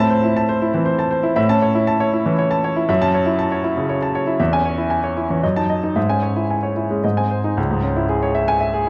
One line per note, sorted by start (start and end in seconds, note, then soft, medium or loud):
0.00 1.33 A2 medium
0.00 0.19 C4 medium
0.00 1.36 E5 medium
0.00 0.19 A5 medium
0.10 0.31 C5 medium
0.24 0.44 E4 medium
0.36 0.57 A5 medium
0.49 0.69 C5 medium
0.62 0.82 E4 medium
0.74 0.94 E3 medium
0.74 0.94 C4 medium
0.85 1.06 C5 medium
0.99 1.19 A5 medium
1.11 1.32 C5 medium
1.23 1.37 E4 medium
1.36 2.84 A2 medium
1.36 1.57 E5 medium
1.49 1.70 C#4 medium
1.49 1.70 A5 medium
1.62 1.82 C#5 medium
1.75 1.95 E4 medium
1.87 2.07 A5 medium
2.00 2.20 C#5 medium
2.13 2.33 E4 medium
2.26 2.46 E3 medium
2.26 2.46 C#4 medium
2.38 2.58 C#5 medium
2.51 2.71 A5 medium
2.64 2.84 C#5 medium
2.76 2.89 E4 medium
2.89 4.35 F#2 medium
2.89 3.09 E5 medium
3.01 3.21 C#4 medium
3.01 3.22 A5 medium
3.14 3.34 C#5 medium
3.26 3.46 E4 medium
3.39 3.59 A5 medium
3.52 3.72 C#5 medium
3.64 3.84 E4 medium
3.77 3.97 C#3 medium
3.77 3.97 C#4 medium
3.89 4.09 C#5 medium
4.02 4.22 A5 medium
4.15 4.35 C#5 medium
4.27 4.40 E4 medium
4.40 5.40 E2 medium
4.40 4.60 E5 medium
4.53 4.73 C#4 medium
4.53 4.73 G#5 medium
4.65 4.86 C#5 medium
4.78 4.99 E4 medium
4.90 5.11 G#5 medium
5.04 5.25 C#5 medium
5.17 5.38 E4 medium
5.30 5.43 E3 medium
5.30 5.43 C#4 medium
5.43 5.95 F#2 medium
5.43 5.64 D#5 medium
5.56 5.78 D#4 soft
5.56 5.78 A5 medium
5.70 5.91 D#5 medium
5.83 5.96 D#4 medium
5.96 7.00 G#2 medium
5.96 6.17 E5 medium
6.09 6.31 C#4 soft
6.09 6.31 G#5 medium
6.22 6.44 C#5 medium
6.36 6.58 E4 medium
6.50 6.72 G#5 medium
6.63 6.85 C#5 medium
6.77 6.98 E4 medium
6.90 7.04 G#3 soft
6.90 7.04 C#4 soft
7.04 7.56 G#2 medium
7.04 7.25 D#5 medium
7.17 7.39 C4 soft
7.17 7.39 G#5 medium
7.31 7.52 C5 medium
7.44 7.57 D#4 medium
7.57 8.89 C#2 medium
7.71 7.92 G#2 medium
7.83 8.04 C#4 medium
7.96 8.17 E4 medium
8.09 8.30 G#4 medium
8.23 8.43 C#5 medium
8.35 8.56 E5 medium
8.48 8.69 G#5 medium
8.61 8.81 E5 medium
8.73 8.89 G#4 medium